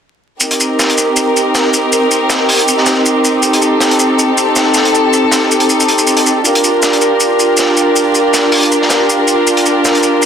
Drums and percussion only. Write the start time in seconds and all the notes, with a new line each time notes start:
0.40 shaker
0.51 closed hi-hat
0.60 shaker
0.79 snare, shaker
0.90 closed hi-hat
0.98 shaker
1.16 shaker
1.37 shaker
1.55 snare, shaker
1.73 shaker
1.93 shaker
2.11 shaker
2.30 snare, shaker
2.49 open hi-hat
2.59 closed hi-hat
2.68 shaker
2.78 snare
2.86 snare, shaker
3.06 shaker
3.24 shaker
3.43 shaker
3.53 closed hi-hat
3.62 shaker
3.80 snare, shaker
3.91 closed hi-hat
3.99 shaker
4.19 shaker
4.38 shaker
4.56 snare, shaker
4.74 snare, shaker
4.85 closed hi-hat
4.95 shaker
5.13 shaker
5.31 snare, shaker
5.51 shaker
5.60 closed hi-hat
5.69 shaker
5.80 shaker
5.88 closed hi-hat
5.98 shaker
6.07 shaker
6.17 closed hi-hat
6.26 shaker
6.45 shaker
6.55 closed hi-hat
6.64 shaker
6.82 snare, shaker
6.93 closed hi-hat
7.01 shaker
7.20 shaker
7.39 shaker
7.57 snare, shaker
7.77 shaker
7.96 shaker
8.15 shaker
8.34 snare, shaker
8.52 open hi-hat
8.63 closed hi-hat
8.72 shaker
8.82 snare
8.90 snare, shaker
9.10 shaker
9.28 shaker
9.47 shaker
9.57 closed hi-hat
9.66 shaker
9.85 snare, shaker
9.95 closed hi-hat
10.03 shaker
10.22 shaker